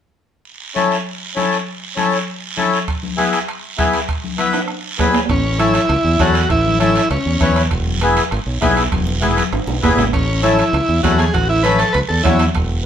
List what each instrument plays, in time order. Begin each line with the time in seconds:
0.45 long guiro
0.75 accordion C#4 E4 A4, high conga, short guiro
0.91 short guiro
1.06 long guiro
1.36 accordion C#4 E4 A4, high conga, short guiro
1.52 short guiro
1.66 long guiro
1.96 accordion C#4 E4 A4, high conga, short guiro
2.12 short guiro
2.28 long guiro
2.57 accordion C#4 E4 A4, high conga, short guiro
2.73 short guiro
2.88 bombo low, bombo rim, high timbale, long guiro
3.03 high conga
3.17 accordion B3 E4 G#4, bombo rim, high conga, high timbale, short guiro
3.33 bombo rim, high timbale, short guiro
3.48 bombo rim, high timbale, long guiro
3.78 accordion B3 E4 G#4, bombo low, bombo rim, high conga, high timbale, short guiro
3.93 bombo rim, high timbale, short guiro
4.08 bombo low, bombo rim, high timbale, long guiro
4.24 high conga
4.38 accordion B3 E4 B4, bombo rim, high conga, high timbale, short guiro
4.53 bombo rim, high timbale, short guiro
4.68 bombo rim, long guiro
4.98 accordion B3 E4 G#4, bombo low, bombo rim, high conga, low timbale, short guiro
5.14 bombo rim, low timbale, short guiro
5.29 fingered electric bass A1, transistor combo organ C#4, bombo low, bombo rim, high timbale, long guiro
5.59 accordion C#4 E4 A4, transistor combo organ E4, bombo rim, high conga, high timbale, short guiro
5.74 transistor combo organ E4, bombo rim, high timbale, short guiro
5.89 fingered electric bass C#2, bombo rim, high timbale, long guiro
6.04 fingered electric bass E2
6.20 fingered electric bass E2, accordion C#4 E4 A4, transistor combo organ F#4, bombo low, bombo rim, high conga, high timbale, short guiro
6.34 bombo rim, high timbale, short guiro
6.49 fingered electric bass A1, transistor combo organ E4, bombo low, bombo rim, high timbale, long guiro
6.66 high conga
6.79 accordion C#4 E4 A4, transistor combo organ E4, bombo rim, high conga, high timbale, short guiro
6.95 bombo rim, high timbale, short guiro
7.10 fingered electric bass C#2, transistor combo organ C#4, bombo rim, high timbale, long guiro
7.26 fingered electric bass E2
7.41 fingered electric bass E2, accordion C#4 E4 B4, bombo low, bombo rim, high conga, high timbale, short guiro
7.56 bombo rim, high timbale, short guiro
7.71 fingered electric bass E1, bombo low, bombo rim, high timbale, long guiro
7.86 high conga
8.01 accordion B3 E4 G#4, bombo rim, high conga, high timbale, short guiro
8.17 bombo rim, high timbale, short guiro
8.31 fingered electric bass G#1, bombo rim, high timbale, long guiro
8.46 fingered electric bass B1
8.61 fingered electric bass B1, accordion B3 E4 G#4, bombo low, bombo rim, high conga, high timbale, low timbale, short guiro
8.77 bombo rim, high timbale, short guiro
8.92 fingered electric bass E1, bombo low, bombo rim, high conga, high timbale, long guiro
9.07 high conga
9.21 accordion B3 E4 G#4, bombo rim, low conga, high timbale, short guiro
9.37 bombo rim, high conga, high timbale, short guiro
9.52 fingered electric bass G#1, bombo rim, high timbale, long guiro
9.67 fingered electric bass B1, low conga, high timbale
9.82 fingered electric bass F#1, accordion B3 E4 G#4, bombo low, bombo rim, low timbale, short guiro
9.97 fingered electric bass G#1, bombo rim, low conga, low timbale, short guiro
10.13 fingered electric bass A1, transistor combo organ C#4, bombo low, bombo rim, high timbale, long guiro
10.42 accordion C#4 E4 A4, transistor combo organ E4, bombo rim, high conga, high timbale, short guiro
10.58 transistor combo organ E4, bombo rim, high timbale, short guiro
10.73 fingered electric bass C#2, bombo rim, high timbale, long guiro
10.89 fingered electric bass E2
11.03 fingered electric bass E2, accordion C#4 E4 A4, transistor combo organ F#4, bombo low, bombo rim, high conga, high timbale, low timbale, short guiro
11.18 transistor combo organ G#4, bombo rim, high timbale, short guiro
11.34 fingered electric bass A1, transistor combo organ F#4, bombo low, bombo rim, high timbale, long guiro
11.49 transistor combo organ E4
11.63 accordion C#4 E4 A4, transistor combo organ B4, bombo rim, high conga, high timbale, short guiro
11.78 transistor combo organ A4, bombo rim, high timbale, short guiro
11.93 fingered electric bass C#2, transistor combo organ B4, bombo rim, high timbale, long guiro
12.09 fingered electric bass E2, transistor combo organ A4
12.23 fingered electric bass E2, accordion C#4 E4 F#4, transistor combo organ E4, bombo low, bombo rim, high conga, high timbale, low timbale, short guiro
12.39 bombo rim, high timbale, short guiro
12.55 fingered electric bass E1, bombo low, bombo rim, high timbale